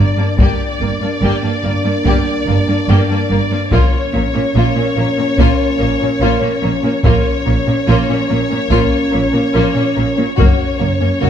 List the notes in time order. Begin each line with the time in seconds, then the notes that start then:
Already playing: A#3 D4 D5
0.17 G2 A#3 D4
0.38 G1 G2 A#3 D4 G4 D5, taiko
0.80 G1 G2 A#3
1.01 G2 A#3 D4
1.21 G1 G2 A#3 G4
1.42 G2 A#3 D4
1.63 G1 G2 A#3
1.84 G2 A#3 D4
2.04 G1 G2 A#3 G4, taiko
2.47 G1 G2 A#3
2.67 G2 A#3 D4
2.88 G1 G2 A#3 G4
3.09 G2 A#3 D4
3.30 G1 G2 A#3
3.50 G2 A#3 D4
3.71 A#1 A#2 A#3 C#4 F4 C#5, taiko
4.13 A#1 A#2 A#3
4.34 A#2 A#3 C#4
4.55 A#1 A#2 A#3 F4
4.76 A#2 A#3 C#4
4.96 A#1 A#2 A#3
5.18 A#2 A#3 C#4
5.38 A#1 A#2 A#3 F4, taiko
5.80 A#1 A#2 A#3
6.01 A#2 A#3 C#4
6.21 A#1 A#2 A#3 F4
6.41 A#2 A#3 C#4
6.63 A#1 A#2 A#3
6.82 A#2 A#3 C#4
7.04 A#1 A#2 A#3 C#4 F4 C#5, taiko
7.45 A#1 A#2 A#3
7.67 A#2 A#3 C#4
7.87 A#1 A#2 A#3 F4
8.09 A#2 A#3 C#4
8.29 A#1 A#2 A#3
8.48 A#2 A#3 C#4
8.70 A#1 A#2 A#3 F4, taiko
9.11 A#1 A#2 A#3
9.33 A#2 A#3 C#4
9.53 A#1 A#2 A#3 F4
9.74 A#2 A#3 C#4
9.95 A#1 A#2 A#3
10.15 A#2 A#3 C#4
10.35 F#1 F#2 A#3 C#4 F#4 C#5, taiko
10.79 F#1 F#2 A#3
10.99 F#2 A#3 C#4
11.21 F#1 F#2 A#3 F#4